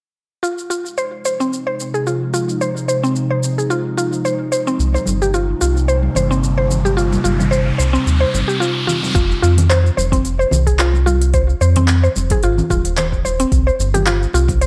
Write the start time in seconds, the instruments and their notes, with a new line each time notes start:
0.43 ambient pad C3 F3 G#3 D#4, synth pluck F4, shaker
0.58 shaker
0.70 synth pluck F4, shaker
0.86 shaker
0.98 synth pluck C5, shaker
1.25 synth pluck C5, shaker
1.40 synth pluck C4, shaker
1.53 shaker
1.67 synth pluck C5
1.80 shaker
1.94 synth pluck G#4, shaker
2.07 synth pluck F4, shaker
2.34 synth pluck F4, shaker
2.49 shaker
2.61 synth pluck C5, shaker
2.77 shaker
2.88 synth pluck C5, shaker
3.03 synth pluck C4, shaker
3.16 shaker
3.30 synth pluck C5
3.43 shaker
3.58 synth pluck G#4, shaker
3.70 synth pluck F4, shaker
3.97 synth pluck F4, shaker
4.13 shaker
4.25 synth pluck C5, shaker
4.52 synth pluck C5, shaker
4.67 synth pluck C4, shaker
4.79 analog synth bass C2, ambient pad C3 G3 A#3, riser, shaker
4.94 synth pluck C5, muted conga, high conga, shaker
5.06 analog synth bass G1, high conga, shaker
5.22 synth pluck G4, muted conga, shaker
5.34 synth pluck F4, shaker
5.61 analog synth bass C2, synth pluck F4, shaker
5.77 shaker
5.88 synth pluck C5, shaker
6.03 high conga
6.15 analog synth bass G1, synth pluck C5, low conga, shaker
6.31 synth pluck C4, shaker
6.43 high conga, shaker
6.58 synth pluck C5, muted conga
6.70 low conga, shaker
6.85 synth pluck G4, muted conga, shaker
6.96 ambient pad C4, synth pluck F4, shaker
7.13 muted conga, high conga, shaker
7.24 analog synth bass G1, synth pluck F4, high conga, shaker
7.40 muted conga, low conga, shaker
7.51 synth pluck C5, shaker
7.78 analog synth bass C2, synth pluck C5, shaker
7.93 synth pluck C4, shaker
8.06 analog synth bass D#2, shaker
8.20 synth pluck C5
8.34 analog synth bass G1, muted conga, high conga, shaker
8.48 synth pluck G4, shaker
8.60 synth pluck F4, muted conga, shaker
8.87 synth pluck F4, low conga, shaker
9.03 muted conga, high conga, shaker
9.15 analog synth bass F1, synth pluck F4, kick, open hi-hat, shaker
9.31 shaker
9.42 analog synth bass F2, synth pluck F4, shaker
9.57 open hi-hat, muted conga, high conga, low conga, shaker
9.70 synth pluck C5, clap, open hi-hat, shaker
9.86 shaker
9.97 analog synth bass F1, synth pluck C5, muted conga, high conga, shaker
10.12 synth pluck C4, kick, open hi-hat, muted conga, shaker
10.25 open hi-hat, shaker
10.39 synth pluck C5, shaker
10.51 analog synth bass C2, low conga, shaker
10.67 synth pluck G#4, kick, open hi-hat, shaker
10.79 synth pluck F4, clap, open hi-hat, shaker
10.93 muted conga, shaker
11.06 synth pluck F4, high conga, shaker
11.22 open hi-hat, shaker
11.34 synth pluck C5, kick, open hi-hat, shaker
11.50 shaker
11.61 analog synth bass F2, synth pluck C5, shaker
11.76 synth pluck C4, open hi-hat, muted conga, high conga, low conga, shaker
11.88 clap, open hi-hat, shaker
12.03 synth pluck C5, shaker
12.16 analog synth bass F1, muted conga, high conga, shaker
12.30 synth pluck G#4, kick, open hi-hat, muted conga, shaker
12.43 analog synth bass G#1, synth pluck F4, open hi-hat, shaker
12.58 low conga, shaker
12.70 analog synth bass D#1, synth pluck F4, kick, high conga, shaker
12.85 open hi-hat, shaker
12.97 synth pluck C5, clap, open hi-hat, low conga, shaker
13.12 kick, shaker
13.25 synth pluck C5, muted conga, shaker
13.40 synth pluck C4, open hi-hat, shaker
13.52 analog synth bass C2, kick, open hi-hat, shaker
13.67 synth pluck C5, shaker
13.79 analog synth bass G1, shaker
13.94 synth pluck G4, open hi-hat, muted conga, high conga, low conga, shaker
14.06 synth pluck F4, clap, open hi-hat, shaker
14.23 shaker
14.33 analog synth bass C2, synth pluck F4, muted conga, high conga, shaker
14.48 kick, open hi-hat, muted conga, shaker
14.61 synth pluck C5, open hi-hat, shaker